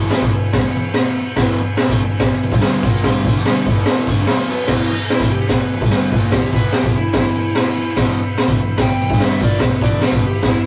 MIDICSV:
0, 0, Header, 1, 6, 480
1, 0, Start_track
1, 0, Tempo, 415225
1, 1589, Time_signature, 4, 2, 24, 8
1, 6384, Tempo, 410678
1, 12391, End_track
2, 0, Start_track
2, 0, Title_t, "Transistor combo organ"
2, 0, Program_c, 0, 18
2, 0, Note_on_c, 0, 71, 64
2, 0, Note_on_c, 0, 76, 67
2, 0, Note_on_c, 0, 80, 82
2, 870, Note_on_c, 0, 83, 79
2, 975, Note_off_c, 0, 80, 0
2, 981, Note_off_c, 0, 83, 0
2, 989, Note_on_c, 0, 80, 67
2, 1084, Note_on_c, 0, 78, 72
2, 1100, Note_off_c, 0, 80, 0
2, 1319, Note_off_c, 0, 78, 0
2, 1322, Note_off_c, 0, 76, 0
2, 1336, Note_on_c, 0, 76, 86
2, 1531, Note_off_c, 0, 71, 0
2, 1565, Note_off_c, 0, 76, 0
2, 1576, Note_on_c, 0, 71, 75
2, 1598, Note_on_c, 0, 76, 69
2, 1606, Note_on_c, 0, 80, 78
2, 4745, Note_off_c, 0, 76, 0
2, 4759, Note_on_c, 0, 76, 74
2, 4958, Note_off_c, 0, 76, 0
2, 4979, Note_on_c, 0, 78, 73
2, 5187, Note_off_c, 0, 78, 0
2, 5198, Note_off_c, 0, 80, 0
2, 5212, Note_on_c, 0, 80, 83
2, 5373, Note_off_c, 0, 71, 0
2, 5423, Note_off_c, 0, 80, 0
2, 5434, Note_on_c, 0, 71, 77
2, 5435, Note_on_c, 0, 76, 66
2, 5456, Note_on_c, 0, 80, 81
2, 9224, Note_off_c, 0, 71, 0
2, 9227, Note_off_c, 0, 76, 0
2, 9238, Note_off_c, 0, 80, 0
2, 9238, Note_on_c, 0, 71, 82
2, 9252, Note_on_c, 0, 76, 65
2, 9266, Note_on_c, 0, 83, 94
2, 12391, Note_off_c, 0, 71, 0
2, 12391, Note_off_c, 0, 76, 0
2, 12391, Note_off_c, 0, 83, 0
2, 12391, End_track
3, 0, Start_track
3, 0, Title_t, "Electric slide guitar"
3, 0, Program_c, 1, 29
3, 5929, Note_on_c, 1, 64, 94
3, 6149, Note_off_c, 1, 64, 0
3, 6149, Note_on_c, 1, 67, 83
3, 6370, Note_on_c, 1, 71, 94
3, 6378, Note_off_c, 1, 67, 0
3, 7311, Note_off_c, 1, 71, 0
3, 7330, Note_on_c, 1, 67, 83
3, 7572, Note_off_c, 1, 67, 0
3, 7576, Note_on_c, 1, 71, 86
3, 7811, Note_on_c, 1, 67, 92
3, 7815, Note_off_c, 1, 71, 0
3, 8052, Note_off_c, 1, 67, 0
3, 8065, Note_on_c, 1, 64, 93
3, 8300, Note_off_c, 1, 64, 0
3, 8329, Note_on_c, 1, 64, 102
3, 9251, Note_off_c, 1, 64, 0
3, 10237, Note_on_c, 1, 79, 86
3, 10698, Note_off_c, 1, 79, 0
3, 10739, Note_on_c, 1, 76, 78
3, 10956, Note_off_c, 1, 76, 0
3, 10962, Note_on_c, 1, 74, 95
3, 11168, Note_on_c, 1, 71, 86
3, 11187, Note_off_c, 1, 74, 0
3, 11407, Note_on_c, 1, 74, 92
3, 11409, Note_off_c, 1, 71, 0
3, 11648, Note_off_c, 1, 74, 0
3, 11672, Note_on_c, 1, 71, 95
3, 11900, Note_off_c, 1, 71, 0
3, 11933, Note_on_c, 1, 67, 93
3, 12151, Note_off_c, 1, 67, 0
3, 12179, Note_on_c, 1, 64, 98
3, 12391, Note_off_c, 1, 64, 0
3, 12391, End_track
4, 0, Start_track
4, 0, Title_t, "Overdriven electric guitar"
4, 0, Program_c, 2, 29
4, 0, Note_on_c, 2, 40, 90
4, 0, Note_on_c, 2, 47, 93
4, 0, Note_on_c, 2, 52, 96
4, 135, Note_off_c, 2, 40, 0
4, 143, Note_off_c, 2, 47, 0
4, 146, Note_off_c, 2, 52, 0
4, 157, Note_on_c, 2, 47, 115
4, 166, Note_on_c, 2, 54, 112
4, 264, Note_off_c, 2, 47, 0
4, 268, Note_off_c, 2, 54, 0
4, 278, Note_on_c, 2, 40, 99
4, 287, Note_on_c, 2, 47, 112
4, 379, Note_off_c, 2, 40, 0
4, 389, Note_off_c, 2, 47, 0
4, 393, Note_on_c, 2, 40, 62
4, 401, Note_on_c, 2, 47, 80
4, 582, Note_off_c, 2, 40, 0
4, 586, Note_off_c, 2, 47, 0
4, 635, Note_on_c, 2, 40, 67
4, 639, Note_on_c, 2, 47, 66
4, 823, Note_off_c, 2, 40, 0
4, 825, Note_off_c, 2, 47, 0
4, 871, Note_on_c, 2, 40, 62
4, 878, Note_on_c, 2, 47, 63
4, 1061, Note_off_c, 2, 40, 0
4, 1065, Note_off_c, 2, 47, 0
4, 1597, Note_on_c, 2, 40, 86
4, 1615, Note_on_c, 2, 47, 99
4, 1623, Note_on_c, 2, 52, 90
4, 1826, Note_off_c, 2, 40, 0
4, 1835, Note_off_c, 2, 47, 0
4, 1839, Note_off_c, 2, 52, 0
4, 2213, Note_on_c, 2, 50, 88
4, 2223, Note_on_c, 2, 57, 117
4, 2314, Note_off_c, 2, 50, 0
4, 2319, Note_off_c, 2, 57, 0
4, 2343, Note_on_c, 2, 40, 71
4, 2349, Note_on_c, 2, 47, 66
4, 2519, Note_off_c, 2, 40, 0
4, 2522, Note_off_c, 2, 47, 0
4, 2817, Note_on_c, 2, 47, 73
4, 2819, Note_on_c, 2, 40, 71
4, 2914, Note_off_c, 2, 40, 0
4, 2919, Note_on_c, 2, 43, 92
4, 2923, Note_off_c, 2, 47, 0
4, 2928, Note_on_c, 2, 50, 101
4, 2936, Note_on_c, 2, 55, 96
4, 3267, Note_off_c, 2, 43, 0
4, 3272, Note_off_c, 2, 50, 0
4, 3276, Note_off_c, 2, 55, 0
4, 3289, Note_on_c, 2, 46, 92
4, 3300, Note_on_c, 2, 53, 104
4, 3304, Note_on_c, 2, 58, 105
4, 3512, Note_on_c, 2, 43, 83
4, 3513, Note_off_c, 2, 46, 0
4, 3518, Note_off_c, 2, 53, 0
4, 3520, Note_off_c, 2, 58, 0
4, 3529, Note_on_c, 2, 50, 90
4, 3539, Note_on_c, 2, 55, 90
4, 3744, Note_off_c, 2, 43, 0
4, 3752, Note_off_c, 2, 50, 0
4, 3757, Note_off_c, 2, 55, 0
4, 3778, Note_on_c, 2, 50, 88
4, 3787, Note_on_c, 2, 57, 113
4, 3877, Note_off_c, 2, 50, 0
4, 3881, Note_off_c, 2, 57, 0
4, 3903, Note_on_c, 2, 40, 91
4, 3915, Note_on_c, 2, 47, 94
4, 3999, Note_off_c, 2, 40, 0
4, 4005, Note_off_c, 2, 47, 0
4, 4014, Note_on_c, 2, 43, 106
4, 4031, Note_on_c, 2, 50, 117
4, 4031, Note_on_c, 2, 55, 126
4, 4235, Note_off_c, 2, 43, 0
4, 4243, Note_off_c, 2, 50, 0
4, 4243, Note_off_c, 2, 55, 0
4, 4267, Note_on_c, 2, 40, 91
4, 4277, Note_on_c, 2, 47, 104
4, 4287, Note_on_c, 2, 52, 102
4, 4720, Note_off_c, 2, 40, 0
4, 4722, Note_off_c, 2, 47, 0
4, 4727, Note_on_c, 2, 50, 89
4, 4730, Note_off_c, 2, 52, 0
4, 4736, Note_on_c, 2, 57, 86
4, 4830, Note_off_c, 2, 50, 0
4, 4835, Note_off_c, 2, 57, 0
4, 4846, Note_on_c, 2, 43, 91
4, 4854, Note_on_c, 2, 50, 92
4, 4950, Note_off_c, 2, 43, 0
4, 4954, Note_off_c, 2, 50, 0
4, 4966, Note_on_c, 2, 47, 90
4, 4986, Note_on_c, 2, 54, 102
4, 5070, Note_off_c, 2, 47, 0
4, 5075, Note_on_c, 2, 46, 83
4, 5080, Note_off_c, 2, 54, 0
4, 5088, Note_on_c, 2, 53, 111
4, 5184, Note_off_c, 2, 46, 0
4, 5190, Note_off_c, 2, 53, 0
4, 5190, Note_on_c, 2, 47, 83
4, 5205, Note_on_c, 2, 54, 96
4, 5215, Note_on_c, 2, 59, 115
4, 5420, Note_off_c, 2, 47, 0
4, 5428, Note_off_c, 2, 54, 0
4, 5433, Note_off_c, 2, 59, 0
4, 5442, Note_on_c, 2, 40, 80
4, 5459, Note_on_c, 2, 47, 91
4, 5468, Note_on_c, 2, 52, 93
4, 5666, Note_off_c, 2, 40, 0
4, 5675, Note_off_c, 2, 47, 0
4, 5679, Note_off_c, 2, 52, 0
4, 6022, Note_on_c, 2, 50, 90
4, 6039, Note_on_c, 2, 57, 95
4, 6135, Note_off_c, 2, 50, 0
4, 6141, Note_on_c, 2, 40, 60
4, 6144, Note_off_c, 2, 57, 0
4, 6147, Note_on_c, 2, 47, 77
4, 6333, Note_off_c, 2, 40, 0
4, 6336, Note_off_c, 2, 47, 0
4, 6640, Note_on_c, 2, 47, 70
4, 6642, Note_on_c, 2, 40, 61
4, 6752, Note_off_c, 2, 47, 0
4, 6753, Note_off_c, 2, 40, 0
4, 6758, Note_on_c, 2, 43, 80
4, 6771, Note_on_c, 2, 55, 91
4, 6780, Note_on_c, 2, 50, 95
4, 7105, Note_off_c, 2, 43, 0
4, 7112, Note_off_c, 2, 55, 0
4, 7116, Note_off_c, 2, 50, 0
4, 7123, Note_on_c, 2, 46, 97
4, 7126, Note_on_c, 2, 53, 90
4, 7138, Note_on_c, 2, 58, 93
4, 7348, Note_off_c, 2, 46, 0
4, 7348, Note_on_c, 2, 40, 58
4, 7349, Note_off_c, 2, 53, 0
4, 7355, Note_off_c, 2, 58, 0
4, 7359, Note_on_c, 2, 47, 64
4, 7468, Note_off_c, 2, 40, 0
4, 7473, Note_off_c, 2, 47, 0
4, 7484, Note_on_c, 2, 40, 73
4, 7496, Note_on_c, 2, 47, 68
4, 7585, Note_off_c, 2, 40, 0
4, 7587, Note_off_c, 2, 47, 0
4, 7599, Note_on_c, 2, 40, 96
4, 7601, Note_on_c, 2, 47, 86
4, 7616, Note_on_c, 2, 52, 95
4, 7811, Note_off_c, 2, 47, 0
4, 7825, Note_on_c, 2, 47, 108
4, 7827, Note_off_c, 2, 40, 0
4, 7831, Note_off_c, 2, 52, 0
4, 7836, Note_on_c, 2, 54, 109
4, 7936, Note_on_c, 2, 40, 102
4, 7940, Note_off_c, 2, 47, 0
4, 7945, Note_off_c, 2, 54, 0
4, 7953, Note_on_c, 2, 47, 93
4, 8055, Note_off_c, 2, 40, 0
4, 8059, Note_off_c, 2, 47, 0
4, 8073, Note_on_c, 2, 47, 73
4, 8075, Note_on_c, 2, 40, 68
4, 8263, Note_off_c, 2, 47, 0
4, 8264, Note_off_c, 2, 40, 0
4, 8307, Note_on_c, 2, 47, 63
4, 8308, Note_on_c, 2, 40, 73
4, 8500, Note_off_c, 2, 47, 0
4, 8501, Note_off_c, 2, 40, 0
4, 8530, Note_on_c, 2, 40, 61
4, 8531, Note_on_c, 2, 47, 71
4, 8732, Note_off_c, 2, 40, 0
4, 8732, Note_off_c, 2, 47, 0
4, 9247, Note_on_c, 2, 47, 97
4, 9248, Note_on_c, 2, 40, 89
4, 9268, Note_on_c, 2, 52, 90
4, 9491, Note_off_c, 2, 40, 0
4, 9491, Note_off_c, 2, 47, 0
4, 9502, Note_off_c, 2, 52, 0
4, 9847, Note_on_c, 2, 50, 102
4, 9856, Note_on_c, 2, 57, 103
4, 9958, Note_on_c, 2, 40, 64
4, 9963, Note_off_c, 2, 50, 0
4, 9968, Note_on_c, 2, 47, 71
4, 9975, Note_off_c, 2, 57, 0
4, 10165, Note_off_c, 2, 40, 0
4, 10170, Note_off_c, 2, 47, 0
4, 10465, Note_on_c, 2, 40, 60
4, 10467, Note_on_c, 2, 47, 74
4, 10586, Note_off_c, 2, 40, 0
4, 10587, Note_off_c, 2, 47, 0
4, 10603, Note_on_c, 2, 43, 92
4, 10611, Note_on_c, 2, 50, 92
4, 10621, Note_on_c, 2, 55, 98
4, 10931, Note_off_c, 2, 50, 0
4, 10935, Note_on_c, 2, 46, 84
4, 10940, Note_off_c, 2, 55, 0
4, 10945, Note_on_c, 2, 53, 97
4, 10948, Note_off_c, 2, 43, 0
4, 10957, Note_on_c, 2, 58, 89
4, 11173, Note_off_c, 2, 46, 0
4, 11176, Note_on_c, 2, 40, 57
4, 11178, Note_off_c, 2, 53, 0
4, 11184, Note_off_c, 2, 58, 0
4, 11186, Note_on_c, 2, 47, 72
4, 11287, Note_off_c, 2, 47, 0
4, 11289, Note_off_c, 2, 40, 0
4, 11301, Note_on_c, 2, 47, 78
4, 11303, Note_on_c, 2, 40, 63
4, 11395, Note_off_c, 2, 40, 0
4, 11409, Note_off_c, 2, 47, 0
4, 11409, Note_on_c, 2, 40, 82
4, 11423, Note_on_c, 2, 47, 103
4, 11426, Note_on_c, 2, 52, 98
4, 11647, Note_off_c, 2, 47, 0
4, 11649, Note_off_c, 2, 40, 0
4, 11658, Note_off_c, 2, 52, 0
4, 11661, Note_on_c, 2, 47, 113
4, 11678, Note_on_c, 2, 54, 102
4, 11771, Note_off_c, 2, 47, 0
4, 11775, Note_on_c, 2, 40, 92
4, 11784, Note_off_c, 2, 54, 0
4, 11785, Note_on_c, 2, 47, 100
4, 11892, Note_off_c, 2, 40, 0
4, 11897, Note_off_c, 2, 47, 0
4, 11909, Note_on_c, 2, 47, 67
4, 11910, Note_on_c, 2, 40, 63
4, 12097, Note_off_c, 2, 47, 0
4, 12098, Note_off_c, 2, 40, 0
4, 12140, Note_on_c, 2, 40, 67
4, 12154, Note_on_c, 2, 47, 67
4, 12332, Note_off_c, 2, 40, 0
4, 12339, Note_off_c, 2, 47, 0
4, 12391, End_track
5, 0, Start_track
5, 0, Title_t, "Muted overdriven electric guitar strokes"
5, 1247, Note_on_c, 9, 29, 62
5, 1363, Note_off_c, 9, 29, 0
5, 1377, Note_on_c, 9, 29, 62
5, 1493, Note_off_c, 9, 29, 0
5, 1855, Note_on_c, 9, 29, 59
5, 1971, Note_off_c, 9, 29, 0
5, 2714, Note_on_c, 9, 29, 56
5, 2829, Note_off_c, 9, 29, 0
5, 5679, Note_on_c, 9, 29, 55
5, 5794, Note_off_c, 9, 29, 0
5, 6507, Note_on_c, 9, 29, 58
5, 6624, Note_off_c, 9, 29, 0
5, 8898, Note_on_c, 9, 29, 65
5, 9007, Note_off_c, 9, 29, 0
5, 9007, Note_on_c, 9, 29, 60
5, 9124, Note_off_c, 9, 29, 0
5, 9508, Note_on_c, 9, 29, 56
5, 9625, Note_off_c, 9, 29, 0
5, 10335, Note_on_c, 9, 29, 52
5, 10452, Note_off_c, 9, 29, 0
5, 12391, End_track
6, 0, Start_track
6, 0, Title_t, "Drums"
6, 121, Note_on_c, 9, 38, 107
6, 125, Note_on_c, 9, 49, 62
6, 236, Note_off_c, 9, 38, 0
6, 241, Note_off_c, 9, 49, 0
6, 254, Note_on_c, 9, 36, 104
6, 369, Note_off_c, 9, 36, 0
6, 613, Note_on_c, 9, 38, 112
6, 618, Note_on_c, 9, 36, 112
6, 618, Note_on_c, 9, 49, 64
6, 729, Note_off_c, 9, 38, 0
6, 733, Note_off_c, 9, 49, 0
6, 734, Note_off_c, 9, 36, 0
6, 1084, Note_on_c, 9, 38, 112
6, 1089, Note_on_c, 9, 49, 62
6, 1200, Note_off_c, 9, 38, 0
6, 1204, Note_off_c, 9, 49, 0
6, 1574, Note_on_c, 9, 38, 109
6, 1579, Note_on_c, 9, 49, 60
6, 1582, Note_on_c, 9, 36, 104
6, 1690, Note_off_c, 9, 38, 0
6, 1694, Note_off_c, 9, 49, 0
6, 1698, Note_off_c, 9, 36, 0
6, 2047, Note_on_c, 9, 38, 123
6, 2051, Note_on_c, 9, 49, 63
6, 2099, Note_on_c, 9, 39, 111
6, 2162, Note_off_c, 9, 38, 0
6, 2167, Note_off_c, 9, 49, 0
6, 2187, Note_on_c, 9, 36, 108
6, 2215, Note_off_c, 9, 39, 0
6, 2303, Note_off_c, 9, 36, 0
6, 2539, Note_on_c, 9, 38, 126
6, 2544, Note_on_c, 9, 49, 66
6, 2548, Note_on_c, 9, 36, 119
6, 2655, Note_off_c, 9, 38, 0
6, 2660, Note_off_c, 9, 49, 0
6, 2664, Note_off_c, 9, 36, 0
6, 2910, Note_on_c, 9, 36, 112
6, 3023, Note_on_c, 9, 38, 125
6, 3025, Note_off_c, 9, 36, 0
6, 3027, Note_on_c, 9, 49, 70
6, 3056, Note_on_c, 9, 39, 82
6, 3138, Note_off_c, 9, 38, 0
6, 3143, Note_off_c, 9, 49, 0
6, 3171, Note_off_c, 9, 39, 0
6, 3275, Note_on_c, 9, 36, 112
6, 3390, Note_off_c, 9, 36, 0
6, 3511, Note_on_c, 9, 38, 122
6, 3516, Note_on_c, 9, 36, 101
6, 3516, Note_on_c, 9, 49, 64
6, 3627, Note_off_c, 9, 38, 0
6, 3631, Note_off_c, 9, 36, 0
6, 3631, Note_off_c, 9, 49, 0
6, 3755, Note_on_c, 9, 36, 101
6, 3870, Note_off_c, 9, 36, 0
6, 3994, Note_on_c, 9, 38, 115
6, 3998, Note_on_c, 9, 49, 67
6, 4014, Note_on_c, 9, 39, 91
6, 4109, Note_off_c, 9, 38, 0
6, 4114, Note_off_c, 9, 49, 0
6, 4130, Note_off_c, 9, 39, 0
6, 4230, Note_on_c, 9, 36, 100
6, 4346, Note_off_c, 9, 36, 0
6, 4457, Note_on_c, 9, 38, 125
6, 4462, Note_on_c, 9, 49, 69
6, 4573, Note_off_c, 9, 38, 0
6, 4577, Note_off_c, 9, 49, 0
6, 4708, Note_on_c, 9, 36, 86
6, 4730, Note_on_c, 9, 39, 61
6, 4824, Note_off_c, 9, 36, 0
6, 4846, Note_off_c, 9, 39, 0
6, 4935, Note_on_c, 9, 38, 122
6, 4940, Note_on_c, 9, 49, 61
6, 4969, Note_on_c, 9, 39, 84
6, 5051, Note_off_c, 9, 38, 0
6, 5055, Note_off_c, 9, 49, 0
6, 5084, Note_off_c, 9, 39, 0
6, 5403, Note_on_c, 9, 38, 110
6, 5408, Note_on_c, 9, 49, 57
6, 5408, Note_on_c, 9, 57, 111
6, 5417, Note_on_c, 9, 36, 113
6, 5519, Note_off_c, 9, 38, 0
6, 5523, Note_off_c, 9, 49, 0
6, 5523, Note_off_c, 9, 57, 0
6, 5532, Note_off_c, 9, 36, 0
6, 5895, Note_on_c, 9, 38, 110
6, 5900, Note_on_c, 9, 49, 61
6, 6011, Note_off_c, 9, 38, 0
6, 6011, Note_on_c, 9, 36, 116
6, 6015, Note_off_c, 9, 49, 0
6, 6126, Note_off_c, 9, 36, 0
6, 6347, Note_on_c, 9, 38, 112
6, 6352, Note_on_c, 9, 49, 61
6, 6362, Note_on_c, 9, 36, 104
6, 6463, Note_off_c, 9, 38, 0
6, 6468, Note_off_c, 9, 49, 0
6, 6479, Note_off_c, 9, 36, 0
6, 6723, Note_on_c, 9, 36, 108
6, 6837, Note_on_c, 9, 38, 104
6, 6840, Note_off_c, 9, 36, 0
6, 6842, Note_on_c, 9, 49, 65
6, 6954, Note_off_c, 9, 38, 0
6, 6959, Note_off_c, 9, 49, 0
6, 7082, Note_on_c, 9, 36, 101
6, 7199, Note_off_c, 9, 36, 0
6, 7311, Note_on_c, 9, 38, 106
6, 7315, Note_on_c, 9, 49, 61
6, 7323, Note_on_c, 9, 36, 111
6, 7427, Note_off_c, 9, 38, 0
6, 7432, Note_off_c, 9, 49, 0
6, 7439, Note_off_c, 9, 36, 0
6, 7561, Note_on_c, 9, 36, 107
6, 7678, Note_off_c, 9, 36, 0
6, 7788, Note_on_c, 9, 38, 116
6, 7793, Note_on_c, 9, 49, 64
6, 7905, Note_off_c, 9, 38, 0
6, 7909, Note_off_c, 9, 49, 0
6, 7917, Note_on_c, 9, 36, 113
6, 8034, Note_off_c, 9, 36, 0
6, 8265, Note_on_c, 9, 38, 124
6, 8270, Note_on_c, 9, 49, 68
6, 8276, Note_on_c, 9, 36, 113
6, 8382, Note_off_c, 9, 38, 0
6, 8387, Note_off_c, 9, 49, 0
6, 8393, Note_off_c, 9, 36, 0
6, 8755, Note_on_c, 9, 38, 108
6, 8760, Note_on_c, 9, 49, 72
6, 8872, Note_off_c, 9, 38, 0
6, 8876, Note_off_c, 9, 49, 0
6, 9238, Note_on_c, 9, 38, 104
6, 9243, Note_on_c, 9, 49, 59
6, 9245, Note_on_c, 9, 36, 103
6, 9355, Note_off_c, 9, 38, 0
6, 9360, Note_off_c, 9, 49, 0
6, 9361, Note_off_c, 9, 36, 0
6, 9721, Note_on_c, 9, 38, 111
6, 9725, Note_on_c, 9, 49, 53
6, 9838, Note_off_c, 9, 38, 0
6, 9842, Note_off_c, 9, 49, 0
6, 9843, Note_on_c, 9, 36, 113
6, 9960, Note_off_c, 9, 36, 0
6, 10186, Note_on_c, 9, 38, 119
6, 10190, Note_on_c, 9, 49, 66
6, 10203, Note_on_c, 9, 36, 107
6, 10303, Note_off_c, 9, 38, 0
6, 10307, Note_off_c, 9, 49, 0
6, 10320, Note_off_c, 9, 36, 0
6, 10563, Note_on_c, 9, 36, 106
6, 10680, Note_off_c, 9, 36, 0
6, 10683, Note_on_c, 9, 38, 112
6, 10688, Note_on_c, 9, 49, 65
6, 10800, Note_off_c, 9, 38, 0
6, 10804, Note_off_c, 9, 49, 0
6, 10923, Note_on_c, 9, 36, 106
6, 11040, Note_off_c, 9, 36, 0
6, 11144, Note_on_c, 9, 38, 114
6, 11149, Note_on_c, 9, 49, 63
6, 11160, Note_on_c, 9, 36, 112
6, 11261, Note_off_c, 9, 38, 0
6, 11266, Note_off_c, 9, 49, 0
6, 11277, Note_off_c, 9, 36, 0
6, 11401, Note_on_c, 9, 36, 107
6, 11518, Note_off_c, 9, 36, 0
6, 11633, Note_on_c, 9, 38, 107
6, 11638, Note_on_c, 9, 49, 73
6, 11750, Note_off_c, 9, 38, 0
6, 11755, Note_off_c, 9, 49, 0
6, 11761, Note_on_c, 9, 36, 113
6, 11878, Note_off_c, 9, 36, 0
6, 12115, Note_on_c, 9, 38, 123
6, 12119, Note_on_c, 9, 49, 65
6, 12122, Note_on_c, 9, 36, 110
6, 12232, Note_off_c, 9, 38, 0
6, 12236, Note_off_c, 9, 49, 0
6, 12239, Note_off_c, 9, 36, 0
6, 12391, End_track
0, 0, End_of_file